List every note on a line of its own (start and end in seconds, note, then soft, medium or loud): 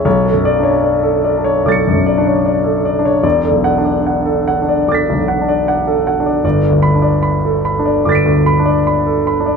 0.05 1.62 B1 medium
0.05 0.37 C#5 medium
0.26 0.57 A4 soft
0.33 0.74 F#2 soft
0.45 0.76 D5 medium
0.59 1.01 D4 soft
0.63 0.95 C#5 soft
0.84 1.16 D5 soft
1.03 1.36 A4 soft
1.24 1.58 D5 soft
1.38 1.82 D4 soft
1.44 1.78 C#5 medium
1.65 3.20 B1 soft
1.65 1.98 A4 soft
1.65 3.20 D6 soft
1.65 3.21 A6 soft
1.72 3.23 C#7 soft
1.87 1.91 F#2 soft
1.93 2.35 F#2 soft
2.06 2.38 D5 medium
2.18 2.61 D4 soft
2.27 2.58 C#5 soft
2.46 2.77 D5 soft
2.64 2.96 A4 soft
2.85 3.16 D5 soft
2.99 3.25 D4 soft
3.05 3.25 C#5 soft
3.23 4.83 E1 medium
3.23 3.56 D5 medium
3.44 3.76 A4 soft
3.51 3.95 B1 soft
3.64 3.97 F#5 medium
3.78 4.22 D4 soft
3.85 4.18 D5 soft
4.07 4.39 F#5 soft
4.25 4.59 A4 soft
4.48 4.80 F#5 medium
4.62 5.04 D4 soft
4.69 5.00 D5 soft
4.88 6.40 E1 soft
4.88 5.20 A4 soft
4.88 6.40 D6 soft
4.88 6.42 A6 soft
4.94 6.43 B6 soft
5.09 5.13 B1 soft
5.15 5.57 B1 soft
5.28 5.59 F#5 soft
5.41 5.83 D4 soft
5.49 5.79 D5 soft
5.68 5.98 F#5 medium
5.87 6.17 A4 soft
6.07 6.37 F#5 soft
6.20 6.45 D4 soft
6.26 6.43 D5 soft
6.44 8.01 G1 medium
6.44 6.75 D5 medium
6.63 6.95 A4 soft
6.70 7.12 D2 soft
6.83 7.15 B5 medium
6.95 7.39 D4 soft
7.02 7.35 D5 soft
7.23 7.56 B5 soft
7.45 7.77 A4 soft
7.65 7.97 B5 soft
7.79 8.22 D4 soft
7.86 8.18 D5 soft
8.05 9.57 G1 soft
8.05 8.38 A4 soft
8.05 9.57 D6 soft
8.05 9.57 A6 soft
8.12 9.57 B6 soft
8.12 9.57 D7 soft
8.25 8.32 D2 soft
8.34 8.75 D2 soft
8.46 8.77 B5 medium
8.59 9.00 D4 medium
8.66 8.96 D5 soft
8.87 9.17 B5 medium
9.07 9.37 A4 soft
9.27 9.57 B5 soft
9.40 9.57 D4 soft
9.46 9.57 D5 soft